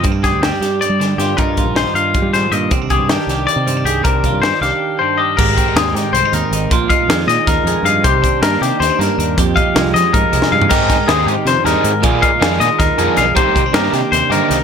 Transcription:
<<
  \new Staff \with { instrumentName = "Clean electric guitar" } { \time 7/8 \key c \minor \tempo 4 = 158 r8 aes'8 g'4 d''4 g'8 | bes'4 c''8 f''4 c''8 ees''8 | r8 aes'8 g'4 d''4 g'8 | bes'4 c''8 f''4 c''8 ees''8 |
bes'4 aes'8 g'8 c''8 bes'4 | r8 f''4 ees''8 bes'4 f''8 | c''4 bes'8 g'8 c''8 bes'4 | r8 f''4 ees''8 bes'4 f''8 |
bes'4 aes'8 g'8 c''8 bes'4 | r8 f''4 ees''8 bes'4 f''8 | c''4 bes'8 g'8 c''8 bes'4 | }
  \new Staff \with { instrumentName = "Overdriven electric guitar" } { \time 7/8 \key c \minor r2. r8 | r2. r8 | r2. r8 | r2. r8 |
r2. r8 | r2. r8 | r2. r8 | r2. r8 |
<aes c' ees' aes'>8 r8 <aes c' ees' aes'>8 r4 <aes c' ees' aes'>8 r8 | <f bes d' aes'>8 r8 <f bes d' aes'>8 r4 <f bes d' aes'>8 r8 | <g c' ees' g'>8 r8 <g c' ees' g'>8 r4 <g c' ees' g'>8 r8 | }
  \new Staff \with { instrumentName = "Clean electric guitar" } { \time 7/8 \key c \minor << { c'16 d'16 g'8 c'16 d'16 g'4 d'8 f'8 | ees'8 f'8 ees'8 f'2 | c'16 d'16 g'8 d'8 g'4 c'16 d'16 aes'8 | d'8 f'8 d'8 g'4 d'8 g'8 |
g'8 c'16 ees'16 c'4 c'16 ees'16 c'8 ees'8 | f'8 ees'8 aes4 ees'8 aes8 ees'8 | g'8 d'8 bes4 c'16 d'16 bes8 d'8 | g'8 ees'8 aes4 ees'8 aes8 ees'8 |
g'8 ees'8 c'2~ c'8 | f'8 ees'8 aes4 ees'8 aes8 ees'8 | g'8 c'16 d'16 bes2~ bes8 | } \\ { g,4 g4. d4 | g,4 ees4 g,8 aes,8 bes,8 | c4 ees4. g,4 | c4 ees4. g,4 |
aes,4 ees4. ees4 | bes,4 ees4. f,4 | c4 ees4. g,4 | f,4 f4. c4 |
aes,4 ees4 f,8 g,8 aes,8 | bes,4 ees4. f,4 | c4 ees4 c8 d8 ees8 | } >> }
  \new Staff \with { instrumentName = "Fingered electric bass" } { \clef bass \time 7/8 \key c \minor g,8. d,8 r16 g,8 r16 g8. g,8 | g,8. bes,,8 r16 g,8 r16 g8. g,8 | c,8. g,8 r16 c,8 r16 c8. c,8 | c,8. g,8 r16 c,16 r4. r16 |
aes,,8 r8 ees,8 aes,16 r16 c,16 r16 ees,16 r16 aes,,8 | bes,,8 r8 f,8 bes,16 r16 ees,16 r16 f,16 r16 g,8 | c,8 r8 g,8 c16 r16 ees,16 r16 g,16 r16 ees,8 | f,8 r8 c,8 f16 r16 aes,16 r16 c,16 r16 g,8 |
aes,8 r8 ees,8 aes,16 r16 c16 r16 ees,16 r16 aes,8 | bes,,8 r8 f,8 bes,16 r16 ees,16 r16 f,16 r16 b,,8 | c,8 r8 g,8 c16 r16 ees,16 r16 g,16 r16 c,8 | }
  \new DrumStaff \with { instrumentName = "Drums" } \drummode { \time 7/8 <hh bd>8 <hh bd sn>8 <hh sn>8 <hh sn>8 hh8 <hh sn>8 <hh sn>8 | <hh bd>8 <hh bd>8 <hh sn>8 hh8 <hh bd>8 <hh sn>8 hh8 | <hh bd>8 <hh bd>8 <hh sn>8 <hh sn>8 hh8 hh8 hh8 | <hh bd>8 <hh bd>8 <hh sn>8 <hh sn>8 r4. |
<cymc bd>8 <hh bd>8 <hh sn>8 <hh sn>8 hh8 hh8 hh8 | <hh bd>8 <hh bd>8 <hh sn>8 <hh sn>8 <hh bd sn>8 hh8 hh8 | <hh bd>8 <hh bd>8 <hh sn>8 <hh sn>8 <hh sn>8 <hh sn>8 hh8 | <hh bd>8 <hh bd>8 <hh sn>8 <hh sn>8 <hh bd>8 hh16 sn8 tomfh16 |
<cymc hh bd>8 <hh bd sn>8 <hh sn>8 hh8 <hh sn>8 <hh sn>8 hh8 | <hh bd>8 <hh bd>8 <hh sn>8 <hh sn>8 <hh bd sn>8 hh8 <hh sn>8 | <hh bd>8 <hh bd>8 <hh sn>8 <hh sn>8 <hh sn>8 hh8 <hh sn>8 | }
>>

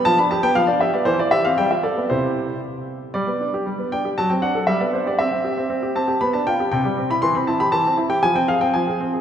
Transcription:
\new Staff \with { instrumentName = "Grand piano" } { \time 2/4 \key c \major \tempo 4 = 118 << { a''16 b''16 a''16 g''16 f''16 d''16 e''16 d''16 | c''16 d''16 e''16 f''16 g''16 e''16 d''8 | c''4 r4 | \key g \major d''4. g''8 |
a''16 g''16 fis''8 e''16 d''16 c''16 d''16 | e''4. a''8 | b''16 a''16 g''8 g''8. b''16 | \key c \major c'''16 b''16 a''16 b''16 a''8. g''16 |
aes''16 g''16 f''16 g''16 aes''8 r8 | } \\ { f16 d'16 g'16 b16 f16 d'16 g'16 b16 | e16 e'16 g'16 c'16 g16 f'16 a'16 b16 | <c e' g'>4 r4 | g16 b16 d'16 g'16 g16 b16 d'16 g'16 |
fis16 c'16 d'16 a'16 g16 b16 d'16 g'16 | c'16 c'16 g'16 c'16 c'16 g'16 c'16 g'16 | b16 d'16 f'16 g'16 c16 g16 c'16 e'16 | e16 c'16 e'16 g'16 e16 c'16 e'16 g'16 |
f16 c'16 aes'16 c'16 f16 aes'16 c'16 aes'16 | } >> }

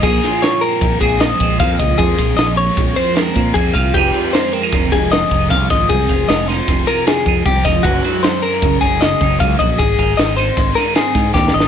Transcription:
<<
  \new Staff \with { instrumentName = "Clean electric guitar" } { \time 5/4 \key bes \dorian \tempo 4 = 154 aes'4 des''8 bes'4 aes'8 ees''4 f''8 ees''8 | aes'4 ees''8 des''4 c''8 bes'4 aes'8 f''8 | g'4 c''8 bes'4 aes'8 ees''4 f''8 ees''8 | aes'4 ees''8 c''4 bes'8 aes'4 g'8 ees''8 |
ges'4 c''8 bes'4 aes'8 ees''4 f''8 ees''8 | aes'4 ees''8 c''4 bes'8 aes'4 g'8 ees''8 | }
  \new Staff \with { instrumentName = "Clean electric guitar" } { \clef bass \time 5/4 \key bes \dorian << { r4 aes8 c'4 c'8 aes8 c'4.~ | c'4 aes4. c'8 aes8 c'4. | <f aes ees' g'>4 aes8 c'16 ees'8. ees'8 aes8 ees'4. | r4 aes8 ees'4 ees'8 aes8 ees'4. |
r4 aes8 c'16 ees'8. ees'8 aes8 ees'4. | r4 c'8 ees'4 ees'8 c'8 ees'4. | } \\ { bes,8 f4. f,2 bes,8 f8 | bes,8 f4. f,2 bes,8 f8 | f,8 f4. c2 f,8 f8 | f,8 f4. c2 f,8 f8 |
ges,8 ges4. des2 ges,8 ges8 | aes,8 ees4. aes,2 aes,8 ees8 | } >> }
  \new Staff \with { instrumentName = "Fingered electric bass" } { \clef bass \time 5/4 \key bes \dorian bes,,8 r4. bes,,8 bes,,4 bes,,8 f,8 des,8 | f,8 bes,,8 bes,,4 bes,,8 r4 bes,8 f,8 c,8 | f,,8 r4. f,,8 f,,4 f,,8 c,8 aes,,8 | c,8 f,,8 f,,4 f,,8 r4 f,8 c,8 f,,8 |
ges,,8 r4. ges,,8 ges,,4 ges,,8 des,8 bes,,8 | aes,,8 aes,,8 aes,,4 aes,,8 r4 aes,8 ees,8 aes,,8 | }
  \new DrumStaff \with { instrumentName = "Drums" } \drummode { \time 5/4 <cymc bd>8 <cymr sn>8 <cymr sn>8 cymr8 <bd cymr>8 <bd cymr>8 <cymr sn>8 <bd cymr>8 <bd cymr>8 <bd cymr>8 | <bd cymr>8 <bd cymr>8 <cymr sn>8 cymr8 <bd cymr>8 cymr8 <cymr sn>8 <bd cymr>8 <bd cymr>8 <bd cymr>8 | <cymc bd>8 cymr8 <cymr sn>8 cymr8 <bd cymr sn>8 <bd cymr sn>8 <cymr sn>8 <bd cymr>8 <bd cymr sn>8 <bd cymr sn>8 | <bd cymr>8 <bd cymr>8 <cymr sn>8 <cymr sn>8 <bd cymr sn>8 cymr8 <cymr sn>8 <bd cymr>8 <bd cymr>8 <bd cymr sn>8 |
<cymc bd>8 <cymr sn>8 <cymr sn>8 cymr8 <bd cymr>8 <bd cymr>8 <cymr sn>8 <bd cymr>8 <bd cymr sn>8 <bd cymr>8 | <bd cymr>8 <bd cymr>8 <cymr sn>8 <cymr sn>8 <bd cymr sn>8 <cymr sn>8 <cymr sn>8 <bd cymr sn>8 \tuplet 3/2 { <bd sn>8 sn8 sn8 } | }
>>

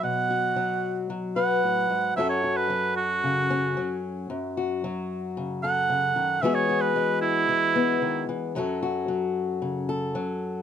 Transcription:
<<
  \new Staff \with { instrumentName = "Oboe" } { \time 4/4 \key fis \minor \tempo 4 = 113 fis''2 r8 fis''4. | e''16 cis''8 b'8. fis'2 r8 | r2 r8 fis''4. | e''16 cis''8 b'8. e'2 r8 |
r1 | }
  \new Staff \with { instrumentName = "Steel-string acoustic guitar" } { \clef bass \time 4/4 \key fis \minor << { r8 fis'2 b'4. | <fis cis' fis' a'>8 fis'2 cis'4. | r8 fis'2 a'4. | <gis b fis' gis'>8 fis'2 b4. |
<fis cis' fis' a'>8 fis'2 a'4. | } \\ { <b, fis>4 fis4 fis4 a,8 gis,8 | fis,4 fis4 cis4 fis4 | fis,4 fis4 cis4 cis8 dis8 | e4 gis4 e4 dis8 e8 |
fis,4 fis4 cis4 fis4 | } >> }
>>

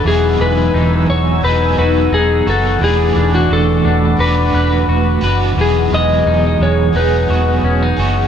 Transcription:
<<
  \new Staff \with { instrumentName = "Analog synth pad" } { \time 4/4 \key e \major \tempo 4 = 87 << { <dis' gis'' e'''>1 | <b' d'''>1 | <gis' dis'''>1 | } \\ { fis''1~ | fis''1~ | fis''1 | } >> }
  \new Staff \with { instrumentName = "Electric slide guitar" } { \time 4/4 \key e \major gis'8 b'4 cis''8 b'8 b'8 gis'8 a'8 | gis'8. fis'16 a'4 b'4. r8 | gis'8 dis''4 cis''8 b'4. r8 | }
  \new Staff \with { instrumentName = "Clean electric guitar" } { \time 4/4 \key e \major e8 gis8 dis'4 dis'8 fis'8 dis'8 fis'8 | e8 d'8 fis'8 d'8 fis'8 b'8 fis'8 b'8 | e8 gis8 dis'8 gis8 dis'8 fis'8 cis'16 dis'16 fis'8 | }
  \new Staff \with { instrumentName = "Overdriven electric guitar" } { \time 4/4 \key e \major <e fis b dis' gis'>2 <fis b dis' gis'>4. <b dis'>8 | <e a d' fis' b'>2 <a d' fis' b'>4. <d' fis' b'>8 | <e fis b dis' gis'>2 <fis b dis' gis'>4. <b dis' gis'>8 | }
  \new Staff \with { instrumentName = "Fingered electric bass" } { \clef bass \time 4/4 \key e \major e,,8 e,,8 e,,8 e,,8 e,,8 e,,8 e,,8 fis,,8 | e,,8 e,,8 e,,8 e,,8 e,,8 e,,8 e,,8 fis,,8 | e,,8 e,,8 e,,8 e,,8 e,,8 e,,8 e,,8 fis,,8 | }
>>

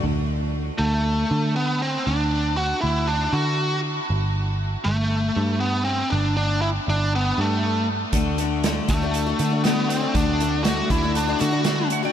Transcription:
<<
  \new Staff \with { instrumentName = "Electric slide guitar" } { \time 4/4 \key d \mixolydian \tempo 4 = 119 r1 | r1 | r1 | r1 |
r1 | r2. r8 fis''16 g''16 | }
  \new Staff \with { instrumentName = "Lead electric guitar" } { \time 4/4 \key d \mixolydian r4. a4. b8 c'8 | d'4 fis'8 e'8 d'8 fis'4 r8 | r4. a4. b8 c'8 | d'8 d'8 e'8 d'8 b8 a4 r8 |
r4. a4. b8 c'8 | d'4 fis'8 e'8 d'8 fis'4 r8 | }
  \new Staff \with { instrumentName = "Steel-string acoustic guitar" } { \time 4/4 \key d \mixolydian r1 | r1 | r1 | r1 |
<d a d' fis'>8 <d a d' fis'>8 <d a d' fis'>8 <d a d' fis'>16 <a d' fis'>8 <a d' fis'>16 <d a d' fis'>16 <a d' fis'>16 <d a d' fis'>8. <a d' fis'>16 | <d a d' fis'>8 <d a d' fis'>8 <d a d' fis'>8 <d a d' fis'>16 <a d' fis'>8 <a d' fis'>16 <d a d' fis'>16 <a d' fis'>16 <d a d' fis'>8. <a d' fis'>16 | }
  \new Staff \with { instrumentName = "Picked electric bass" } { \clef bass \time 4/4 \key d \mixolydian d,4. d,4 d4. | d,4. d,4 d4. | g,,4. g,,4 g,4. | g,,4. g,,4 g,4. |
d,4. d,4 d4. | d,4. d,4 d4. | }
  \new DrumStaff \with { instrumentName = "Drums" } \drummode { \time 4/4 r4 r4 r4 r4 | r4 r4 r4 r4 | r4 r4 r4 r4 | r4 r4 r4 r4 |
<hh bd>8 hh8 <hh sn>8 <hh bd>8 hh8 hh8 <hh sn>8 hh8 | <hh bd>8 hh8 <hh sn>8 <hh bd>8 hh8 hh8 <hh sn>8 hh8 | }
>>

